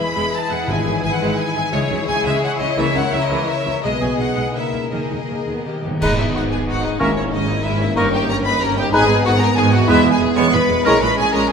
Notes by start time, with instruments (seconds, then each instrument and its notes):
Already playing: harp E3 G#3 E4 G#4, viola section E4, violin section G#4 B4 B5
0.14 double bass section E1, cello section E2, viola section G#3, harp B4
0.33 harp G#4, violin section A5
0.50 double bass section E1, cello section E2, viola section G#3, harp E4, violin section F#5
0.67 double bass section G#1, cello section G#2, timpani G#2, harp G#2, french horn section G#3 E4, viola section G#3, violin section G#5
0.86 double bass section G#1, cello section G#2, harp E3, viola section F#3
1.03 double bass section G#1, cello section G#2, viola section G#3, harp B3, violin section G#5
1.11 violin section F#5
1.20 double bass section G#1, cello section G#2, viola section G#3, harp G#4
1.38 harp E4, violin section G#5
1.55 double bass section G#1, cello section G#2, viola section G#3, harp B3
1.72 double bass section C#2, harp C#3, cello section C#3, viola section G#3 E4, french horn section G#3 E4, violin section G#4 C#5
1.90 double bass section C#2, cello section C#3, viola section F#3, harp G#3
2.07 double bass section C#2, cello section C#3, viola section G#3, harp E4, violin section G#5
2.25 double bass section C#2, cello section C#3, viola section G#3, harp C#5, violin section E5
2.43 harp G#4, violin section F#5
2.60 double bass section C#2, cello section C#3, viola section G#3, harp E4, violin section D#5
2.77 double bass section C#2, cello section C#3, harp C#3, viola section E3, french horn section A#3 E4, violin section A#4 E5
2.95 double bass section C#2, cello section C#3, viola section D#3, harp A#3, violin section F#5
3.12 double bass section C#2, cello section C#3, viola section E3, harp E4, violin section E5
3.22 violin section D#5
3.29 double bass section C#2, cello section C#3, viola section E3, harp C#5
3.48 harp A#4, violin section E5
3.65 double bass section C#2, cello section C#3, viola section E3, harp E4
3.82 double bass section B1, cello section B2, harp B2, viola section G#3 B3, french horn section B3 G#4, violin section G#4 D#5
4.00 double bass section B1, cello section B2, viola section F#3, harp G#3, violin section G#5
4.18 double bass section B1, cello section B2, viola section G#3, harp D#4, violin section F#5
4.36 double bass section B1, cello section B2, viola section G#3, harp B4
4.54 harp C#3, french horn section A#3 A#4, viola section A#3, violin section E4 A#4 E5
4.72 double bass section C#2, cello section C#3, viola section A#3, harp C#4 A#4
4.90 double bass section D#2, harp D#3, cello section D#3, french horn section A#3 G#4, viola section A#3 D#4, violin section G#4 D#5
5.09 double bass section D#2, cello section D#3, viola section G#3, harp G#3
5.28 double bass section D#2, cello section D#3, viola section A#3, harp A#4
5.46 double bass section D#2, cello section D#3, viola section B3, harp G#4
5.65 harp D#3, timpani D#3, french horn section A#3 G4, viola section A#3, violin section G4
5.74 timpani D#3
5.82 double bass section D#2, harp G#2 A#3 A#4, timpani D#3, cello section D#3, viola section B3
5.88 timpani D#3, harp G#3
5.92 harp B3
5.97 harp G#4, violin section D#5
6.01 double bass section G#1, cello section G#2, bassoon G#3, viola section G#3 D#4, french horn section B3 D#4, violin section D#4, clarinet D#4, oboe B4, flute section B5, concert bass drum, crash
6.17 viola section B3 G#4, violin section E4 E5
6.34 double bass section G#1, cello section G#2, viola section G#3 D#4, violin section F#4 F#5
6.51 viola section B3 G#4, violin section G#4 G#5
6.67 double bass section G#1, cello section G#2, viola section G#3 D#4, violin section F#4 F#5
6.82 harp G#2, viola section B3 G#4, violin section D#4 D#5
6.87 harp A#3
6.91 harp C#4
6.96 clarinet C#4, harp C#5, flute section C#6
7.00 double bass section G#1, timpani G#2, cello section G#2, viola section G#3 C#4, bassoon A#3, french horn section A#3 C#4, violin section E4 E5, oboe A#4
7.16 viola section A#3 E4, violin section C#4 C#5
7.32 double bass section G#1, cello section G#2, viola section G#3 C#4, violin section D#4 D#5
7.49 viola section A#3 E4
7.64 double bass section G#1, cello section G#2, viola section G#3 C#4, violin section E4 E5
7.79 harp G2, viola section A#3 E4
7.83 harp A#3
7.88 harp D#4
7.93 double bass section G1, cello section G2, viola section C#4, clarinet D#4, harp C#5, violin section D#5, flute section C#6
7.97 viola section G3, bassoon A#3, violin section D#4, oboe A#4
8.14 viola section A#3 D#4, violin section G4 G5
8.29 double bass section G1, cello section G2, viola section G3 C#4, violin section A#4 A#5
8.44 viola section A#3 D#4, violin section B4 B5
8.60 double bass section G1, cello section G2, viola section G3 C#4, violin section A#4 A#5
8.75 harp G#2, viola section A#3 D#4, violin section G4 G5
8.80 harp G#3
8.84 harp D#4
8.89 french horn section G#3, clarinet D#4, harp B4, violin section G#5
8.93 double bass section G#1, cello section G#2, viola section D#3 B3, bassoon G#3, french horn section B3, violin section G#4, oboe B4, flute section B5
9.09 viola section G#3 D#4
9.24 double bass section G#1, cello section G#2, viola section D#3 B3, violin section F#4 F#5
9.39 viola section G#3 D#4, violin section A#4 A#5
9.55 double bass section G#1, cello section G#2, viola section D#3 B3, violin section G#4 G#5
9.70 harp E2, viola section G#3 D#4, violin section F#4 F#5
9.75 harp G#3
9.79 harp E4
9.84 viola section G#3 B3, harp B4, violin section E5
9.88 double bass section E1, cello section E2, bassoon G#3, clarinet E4, violin section E4, oboe B4, flute section B5
10.04 double bass section E1, cello section E2, viola section G#3 B3
10.11 violin section G#4 G#5
10.20 double bass section E1, cello section E2, viola section G#3 B3
10.35 double bass section E1, cello section E2, viola section G#3 B3, violin section C#5 C#6
10.51 double bass section E1, cello section E2, viola section G#3 B3, violin section B4 B5
10.68 double bass section E1, cello section E2, harp A#2, viola section G#3 B3
10.72 harp G#3
10.77 harp E4
10.81 viola section G#3 C#4, french horn section G#3 C#4, oboe A#4, violin section A#4 A#5, harp C#5
10.86 double bass section A#1, cello section A#2, bassoon G#3, clarinet E4, flute section C#6
11.00 double bass section A#1, cello section A#2, viola section G#3 C#4, violin section B4 B5
11.17 double bass section A#1, cello section A#2, viola section G#3 C#4, violin section G#4 G#5
11.32 double bass section A#1, cello section A#2, viola section G#3 C#4, violin section A#4 A#5